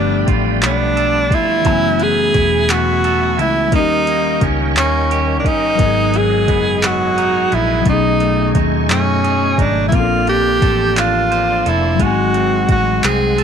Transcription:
Already playing: fingered electric bass G1, tine electric piano F3 A3 B3 D4 G4, clean electric guitar G3 B3, tonewheel organ A3 D5 G5 B5, tenor saxophone D4
0.28 fingered electric bass A1, clean electric guitar F4, kick, closed hi-hat
0.63 fingered electric bass B1, clean electric guitar B3, tenor saxophone D4, clap, closed hi-hat
0.97 clean electric guitar A4, closed hi-hat
1.31 fingered electric bass E1, tenor saxophone E4, clean electric guitar F4, kick, closed hi-hat
1.61 tine electric piano E3 G#3, closed hi-hat
1.65 fingered electric bass F#1, clean electric guitar F#3, tine electric piano B3, tonewheel organ E5 G#5, kick
1.70 tine electric piano A3 C#4 G#5
2.00 clean electric guitar B3, tenor saxophone G#4, closed hi-hat
2.34 fingered electric bass E1, clean electric guitar E4, kick, closed hi-hat
2.69 clean electric guitar B3, tenor saxophone F#4, clap, closed hi-hat
3.04 clean electric guitar A4, closed hi-hat
3.38 fingered electric bass C#2, clean electric guitar E4, tenor saxophone E4, closed hi-hat
3.68 tine electric piano G3 A#3
3.72 fingered electric bass D#2, clean electric guitar D#3, tine electric piano C#4, tenor saxophone D#4, tonewheel organ A#4 D#5 G5 C#6, kick, closed hi-hat
3.76 tine electric piano D#4 G4
4.07 clean electric guitar A#3, closed hi-hat
4.41 fingered electric bass C#2, clean electric guitar C#4, kick, closed hi-hat
4.76 fingered electric bass D#2, clean electric guitar A#3, tenor saxophone C#4, clap, closed hi-hat
5.11 clean electric guitar G4, closed hi-hat
5.40 tenor saxophone D4
5.45 fingered electric bass G1, clean electric guitar C#4, tenor saxophone D#4, kick, closed hi-hat
5.75 tine electric piano F#3 A#4
5.79 fingered electric bass G#1, clean electric guitar G#2, tine electric piano B3 D#5, tonewheel organ G#4 F#5 G#5, kick, closed hi-hat
5.86 tine electric piano G#4
6.14 clean electric guitar F#3, tenor saxophone G#4, closed hi-hat
6.48 fingered electric bass F#1, clean electric guitar B3, kick, closed hi-hat
6.83 clean electric guitar F#3, tenor saxophone F#4, clap, closed hi-hat
7.18 clean electric guitar D#4, closed hi-hat
7.51 fingered electric bass A#1, clean electric guitar B3, tenor saxophone E4, closed hi-hat
7.82 tine electric piano F#3 A3, tonewheel organ A3 C#6, closed hi-hat
7.86 fingered electric bass B1, clean electric guitar B2, tine electric piano C#4, tenor saxophone D#4, tonewheel organ G#5, kick
7.90 tine electric piano D#4 G#4
8.20 clean electric guitar A3, closed hi-hat
8.55 fingered electric bass D#2, clean electric guitar D#4, kick, closed hi-hat
8.90 fingered electric bass F#2, clean electric guitar A3, tenor saxophone C#4, clap, closed hi-hat
9.24 clean electric guitar G#4, closed hi-hat
9.58 fingered electric bass G#1, tenor saxophone D4, clean electric guitar D#4, kick, closed hi-hat
9.88 tine electric piano F3 A#3, tonewheel organ A#3 D5 C6, tenor saxophone E4, closed hi-hat
9.92 fingered electric bass A#1, clean electric guitar A#3, tine electric piano C4, tenor saxophone F4, kick
9.97 tine electric piano C#4 A4
10.03 tine electric piano D4
10.27 clean electric guitar D4, tenor saxophone G4, closed hi-hat
10.62 fingered electric bass A1, clean electric guitar A4, kick, closed hi-hat
10.97 clean electric guitar D4, tenor saxophone F4, clap, closed hi-hat
11.32 clean electric guitar C5, closed hi-hat
11.66 fingered electric bass F1, tenor saxophone E4, clean electric guitar A4, closed hi-hat
11.95 tine electric piano F#3 G#3
11.99 fingered electric bass G#1, tonewheel organ G#3 F#5, clean electric guitar G#3, tine electric piano B3, tenor saxophone F#4, kick, closed hi-hat
12.03 tine electric piano D#4 G#5
12.07 tine electric piano C4
12.34 clean electric guitar C4, closed hi-hat
12.69 fingered electric bass A1, clean electric guitar F#4, tenor saxophone F#4, kick, closed hi-hat
13.04 fingered electric bass C2, clean electric guitar C4, tenor saxophone G#4, clap, closed hi-hat
13.38 clean electric guitar A4, closed hi-hat

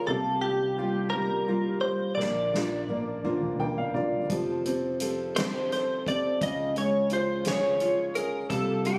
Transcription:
Already playing: upright piano G#3 C#4 F4
0.07 fingered electric bass C2, steel-string acoustic guitar C3 G3 A#3 F4 G4, upright piano C3, clean electric guitar A4
0.41 upright piano G3, steel-string acoustic guitar A#3 F4 G4, clean electric guitar G4
0.78 steel-string acoustic guitar G3 A#3 F4 G4, upright piano F4
1.10 steel-string acoustic guitar G3 A#3 F4 G4, clean electric guitar A#4
1.14 steel-string acoustic guitar C3, upright piano G3
1.48 steel-string acoustic guitar G3 A#3 F4 G4, upright piano F4
1.81 upright piano G3, steel-string acoustic guitar A#3 F4 G4, clean electric guitar C5
2.15 fingered electric bass A#1, steel-string acoustic guitar A#2 D3 F3 A#3 A#4, upright piano A#3, clean electric guitar D5
2.19 steel-string acoustic guitar D4, snare
2.53 steel-string acoustic guitar F3 A#3 D4 A#4, upright piano F4, snare
2.88 steel-string acoustic guitar F3 A#3 D4 A#4, upright piano A#3, high tom
3.24 steel-string acoustic guitar A#2 D3 F3 A#3 D4 A#4, upright piano F4, mid tom
3.41 mid tom
3.59 steel-string acoustic guitar F3 A#3 D4 A#4, upright piano A#3 G5, mid tom
3.77 upright piano F5, floor tom
3.94 steel-string acoustic guitar F3 A#3 D4 A#4, upright piano F4 D5, floor tom
4.12 floor tom
4.30 fingered electric bass F1, steel-string acoustic guitar F3 C4 G4 A4, upright piano F3, kick, closed hi-hat
4.65 upright piano C4, steel-string acoustic guitar C4 G4 A4, closed hi-hat
5.00 steel-string acoustic guitar F3 C4 G4 A4, upright piano A4, closed hi-hat
5.36 steel-string acoustic guitar F3 C4 G4, upright piano C4, clean electric guitar C5, snare, closed hi-hat
5.72 steel-string acoustic guitar F3 C4 G4 A4, upright piano A4, clean electric guitar C5, snare, closed hi-hat
6.06 upright piano C4, steel-string acoustic guitar C4 G4 A4, clean electric guitar D5, kick, closed hi-hat
6.41 fingered electric bass C#2, steel-string acoustic guitar C#3 F3 C#4 F4 G#4, upright piano C#3, clean electric guitar D#5, kick, closed hi-hat
6.76 upright piano G#3, steel-string acoustic guitar C#4 F4 G#4, clean electric guitar C#5, closed hi-hat
7.10 steel-string acoustic guitar F3 C#4 F4 G#4, upright piano F4, clean electric guitar C5, closed hi-hat
7.45 steel-string acoustic guitar C#3 F3 C#4 F4 G#4, upright piano G#4, clean electric guitar C#5, snare, closed hi-hat
7.80 steel-string acoustic guitar F3 C#4 F4 G#4, upright piano F4, closed hi-hat
8.15 steel-string acoustic guitar C#4 F4 G#4, upright piano G#4, clean electric guitar A#4, closed hi-hat
8.49 fingered electric bass C2, steel-string acoustic guitar C3 G3 A#3 F4 G4, upright piano C3, clean electric guitar A4, kick, closed hi-hat
8.84 upright piano G3, steel-string acoustic guitar A#3 F4 G4, clean electric guitar G4, closed hi-hat

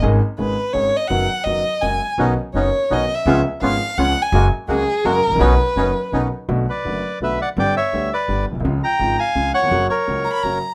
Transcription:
0.02 grand piano G#1 G#2 D#3 G#3 C#4 G#4, upright bass G#1
0.38 grand piano G#1 G#2 D#3 G#3 C#4 G#4, upright bass G#1, violin B4
0.73 grand piano G#1 G#2 D#3 G#3 C#4 G#4, upright bass G#1, violin C#5
0.96 violin D#5
1.08 upright bass F#1, grand piano F#2 D#3 F#3 B3 F#4, violin F#5
1.44 upright bass F#1, grand piano F#2 D#3 F#3 B3 F#4, violin D#5
1.82 upright bass F#1, grand piano F#2 C#3 F#3 G#3 A#3 F#4, violin G#5
2.18 upright bass B1, grand piano B1 B2 D#3 B3 C#4 F#4, bandoneon B3 C#4 D#4
2.54 upright bass F#1, grand piano F#1 F#2 D#3 B3 C#4 F#4, bandoneon B3 C#4 D#4, violin C#5
2.90 upright bass B1, grand piano B1 B2 D#3 B3 C#4 F#4, bandoneon B3 C#4 D#4, violin D#5
3.15 violin E5
3.26 upright bass C#2, grand piano C#2 C#3 F3 B3 C#4 G#4, bandoneon B3 C#4 F4
3.62 upright bass G#1, grand piano G#1 G#2 F3 B3 C#4 G#4, bandoneon B3 C#4 F4, violin F5
3.97 upright bass C#2, grand piano C#2 C#3 F3 B3 C#4 G#4, bandoneon B3 C#4 F4, violin F#5
4.22 violin G#5
4.32 upright bass F#1, grand piano F#2 F#3 A#3 C#4 G#4, bandoneon G#3 A#3 F#4
4.67 upright bass C#2, grand piano C#2 C#3 F#3 A#3 C#4 G#4, bandoneon G#3 A#3 F#4, violin G#4
5.04 upright bass F#1, grand piano F#2 F#3 A#3 C#4 G#4, bandoneon G#3 A#3 F#4, violin A#4
5.27 grand piano G#1 A1, upright bass G#1
5.32 upright bass A1 A#1, grand piano A#1
5.39 grand piano B1 B2 D#3 B3 C#4 F#4, upright bass B1, bandoneon B3 C#4 D#4, violin B4
5.76 upright bass F#1, grand piano F#1 F#2 D#3 B3 C#4 F#4, bandoneon B3 C#4 D#4
6.12 upright bass B1, grand piano B1 B2 D#3 B3 C#4 F#4, bandoneon B3 C#4 D#4
6.49 upright bass B1, grand piano B1 B2 D3 A3 B3 F#4
6.69 bandoneon B4 D5
6.85 upright bass F#1, grand piano F#1 F#2 D3 A3 B3 F#4
7.21 upright bass B1, grand piano B1 B2 D3 A3 B3 F#4, bandoneon B4 E5
7.42 bandoneon D5 F#5
7.57 upright bass G1, grand piano G1 G2 D3 G3 B3 G4, bandoneon D5 G5
7.77 bandoneon C#5 E5
7.93 upright bass D2, grand piano D2 D3 G3 B3 G4
8.13 bandoneon B4 D5
8.28 upright bass G1, grand piano G1 G2 D3 G3 B3 G4
8.50 upright bass A#1, grand piano A#1
8.55 upright bass B1, grand piano B1
8.60 upright bass C2, grand piano C2
8.64 grand piano C#2 C#3 F3 G#3 F4, upright bass C#2
8.84 bandoneon G5 A#5
8.99 grand piano G#1 G#2 C#3 F3 G#3 F4, upright bass G#1
9.19 bandoneon F5 G#5
9.35 upright bass C#2, grand piano C#2 C#3 F3 G#3 F4
9.54 bandoneon C#5 F#5
9.58 grand piano D#2
9.63 grand piano E2
9.67 grand piano F2
9.71 upright bass F#1, grand piano F#2 C#3 F#3 A#3 F#4
9.89 bandoneon A#4 C#5
10.07 grand piano C#2 C#3 F#3 A#3 F#4, upright bass C#2
10.24 violin A#5
10.33 violin B5
10.43 upright bass F#1, grand piano F#2 C#3 F#3 A#3 F#4, violin A#5

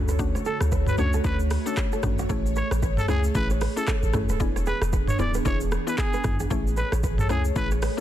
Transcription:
Already playing: 808-style bass D2, analog synth pad D3 A3 F#4 C#5, synth pluck A3 C#4 D4 F#4, downlifter
0.08 kora B4, shaker
0.19 synth pluck A3 C#4 D4 F#4, kick, shaker
0.35 kora C#5, shaker
0.45 kora A4, trumpet A4, shaker
0.61 808-style bass D2, cross-stick, shaker
0.72 kora B4, kick, shaker
0.86 trumpet B4, mid tom, shaker
0.98 808-style bass C#2, synth pluck A3 C#4 D4 F#4, trumpet C#5, kora C#5, shaker
1.13 kora A4, shaker
1.24 808-style bass D2, synth pluck A3 C#4 D4 F#4, trumpet B4, kora C#5, kick, shaker
1.39 shaker
1.50 cross-stick, open hi-hat, shaker
1.66 synth pluck A3 C#4 D4 F#4, trumpet A4, shaker
1.77 kick, cross-stick, clap, shaker
1.92 kora A4, shaker
2.03 808-style bass G#1, synth pluck A3 C#4 D4 F#4, kick, cross-stick, mid tom, shaker
2.19 kora F#4, shaker
2.29 808-style bass A1, synth pluck A3 C#4 E4 G#4, analog synth pad G#4, kora C#5, kick, shaker
2.46 shaker
2.56 kora B4, trumpet C#5, shaker
2.71 808-style bass A1, kora C#5, cross-stick, shaker
2.82 kora B4, kick, shaker
2.97 trumpet A4, mid tom, shaker
3.08 808-style bass C#2, synth pluck A3 C#4 E4 G#4, trumpet G#4, kora C#5, cross-stick, shaker
3.24 shaker
3.35 808-style bass A1, synth pluck A3 C#4 E4 G#4, trumpet B4, kick, shaker
3.50 kora C#5, shaker
3.61 kora B4, cross-stick, open hi-hat, shaker
3.76 synth pluck A3 C#4 E4 G#4, trumpet A4, shaker
3.87 kora A4, kick, cross-stick, clap, shaker
4.03 808-style bass A1, shaker
4.13 synth pluck A3 C#4 E4 G#4, kora A4, kick, cross-stick, mid tom, shaker
4.29 808-style bass D1, kora B4, shaker
4.40 808-style bass E1, analog synth pad E3 B3 D4 G#4, synth pluck B3 D4 E4 G#4, kick, shaker
4.56 kora C#5, shaker
4.66 kora G#4, trumpet B4, shaker
4.82 808-style bass E1, cross-stick, shaker
4.93 kora B4, kick, shaker
5.07 trumpet C#5, mid tom, shaker
5.19 808-style bass D1, synth pluck B3 D4 E4 G#4, kora C#5, trumpet D5, shaker
5.34 kora B4, shaker
5.45 808-style bass E1, synth pluck B3 D4 E4 G#4, trumpet C#5, kora D5, kick, shaker
5.61 shaker
5.72 cross-stick, shaker
5.87 synth pluck B3 D4 E4 G#4, trumpet B4, shaker
5.98 trumpet G#4, kick, cross-stick, clap, shaker
6.13 kora B4, shaker
6.24 808-style bass G#1, synth pluck B3 D4 E4 G#4, kick, cross-stick, mid tom, shaker
6.40 kora G#4, shaker
6.50 808-style bass A1, synth pluck A3 C#4 E4 G#4, analog synth pad A3 G#4 C#5, kora C#5, kick, shaker
6.67 shaker
6.77 kora B4, trumpet B4, shaker
6.92 808-style bass A1, kora C#5, cross-stick, shaker
7.03 kora B4, kick, shaker
7.18 trumpet A4, mid tom, shaker
7.29 808-style bass C#2, synth pluck A3 C#4 E4 G#4, trumpet G#4, kora C#5, cross-stick, shaker
7.45 shaker
7.56 808-style bass A1, synth pluck A3 C#4 E4 G#4, trumpet B4, kick, shaker
7.71 kora C#5, shaker
7.82 kora B4, cross-stick, open hi-hat, shaker
7.97 synth pluck A3

